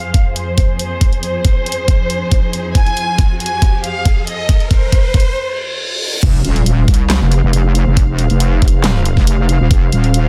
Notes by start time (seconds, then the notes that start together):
Already playing: F2 F3 G#4 C5 F5, riser
0.14 kick, closed hi-hat
0.36 C5, closed hi-hat
0.58 kick, closed hi-hat
0.79 C5, closed hi-hat
1.01 kick, closed hi-hat
1.13 closed hi-hat
1.23 C5, closed hi-hat
1.45 kick, closed hi-hat
1.66 closed hi-hat
1.72 closed hi-hat
1.88 kick, closed hi-hat
2.10 closed hi-hat
2.31 kick, closed hi-hat
2.53 closed hi-hat
2.75 G#5, kick, closed hi-hat
2.87 closed hi-hat
2.97 closed hi-hat
3.18 kick, closed hi-hat
3.40 G#5, closed hi-hat
3.46 closed hi-hat
3.62 kick, closed hi-hat
3.84 F5, closed hi-hat
4.05 kick, closed hi-hat
4.27 D#5, closed hi-hat
4.49 kick, closed hi-hat
4.60 closed hi-hat
4.71 C5, kick, closed hi-hat
4.92 kick, closed hi-hat
5.14 kick, closed hi-hat
5.20 closed hi-hat
5.36 reverse cymbal
6.23 F1 F3 C4 C5 F5, kick, closed hi-hat, crash, impact
6.45 D#1, closed hi-hat
6.56 closed hi-hat
6.66 closed hi-hat
6.88 C2, kick, closed hi-hat
6.94 closed hi-hat
7.10 snare, clap, closed hi-hat
7.21 F1
7.32 closed hi-hat
7.43 F1
7.53 closed hi-hat
7.75 closed hi-hat
7.86 F1
7.97 kick, closed hi-hat
8.19 closed hi-hat
8.30 F1, closed hi-hat
8.40 closed hi-hat
8.62 kick, closed hi-hat
8.68 closed hi-hat
8.84 snare, clap, closed hi-hat
9.05 closed hi-hat
9.17 F1, kick, snare
9.27 closed hi-hat
9.49 closed hi-hat
9.60 D#1
9.71 F1, kick, closed hi-hat
9.92 D#1, closed hi-hat
10.04 closed hi-hat
10.14 closed hi-hat